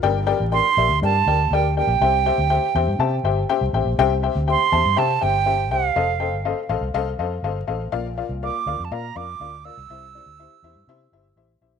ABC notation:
X:1
M:4/4
L:1/16
Q:1/4=122
K:Cmix
V:1 name="Flute"
z4 c'4 a4 g2 g2- | g12 z4 | z4 c'4 a2 g4 f2- | f6 z8 z2 |
z4 d'3- d'/2 a/2 b2 d'4 e'2- | e'12 z4 |]
V:2 name="Upright piano"
[GBdg]2 [GBdg]2 [GBdg]2 [GBde]2 [GBdg]2 [GBdg]2 [GBdg]2 [GBdg]2 | [Gceg]2 [Gceg]2 [Gceg]2 [Gceg]2 [Gcea]2 [Gceg]2 [Gceg]2 [Gceg]2 | [Gceg]2 [Gceg]2 [Gceg]2 [Gcea]2 [Gceg]2 [Gceg]2 [Gceg]2 [Gceg]2 | [Ac_ef]2 [Aceg]2 [Acef]2 [Acef]2 [Acef]2 [Acef]2 [Acef]2 [Acef]2 |
[FBdf]2 [FBdf]2 [FBdf]2 [FBdf]2 [FBdf]2 [FBdf]2 [FBdf]2 [FBdf]2 | [EGce]2 [EGcd]2 [EGce]2 [EGce]2 [EGce]2 [EGce]2 [EGce]2 [EGce]2 |]
V:3 name="Upright piano" clef=bass
G,,6 z8 z2 | C,6 z8 z2 | C,6 z8 z2 | z16 |
B,,6 z8 z2 | C,6 z8 z2 |]
V:4 name="Fingered electric bass" clef=bass
G,,,3 A,,,2 z B,,, D,, G,,2 D,,2 D,,3 B,,, | C,,3 D,,2 z E,, G,, C,2 G,,,2 z C,, A,,, B,,, | C,,3 D,,2 z E,, G,, C,2 G,,,4 C,,2 | F,,,3 G,,,2 z A,,, C,, C,,2 F,,2 G,,,2 A,,,2 |
B,,,3 C,,2 z D,, F,, B,,2 F,,2 D,,3 C,, | C,,3 D,,2 z E,, G,, C,2 G,,,2 A,,,2 B,,,2 |]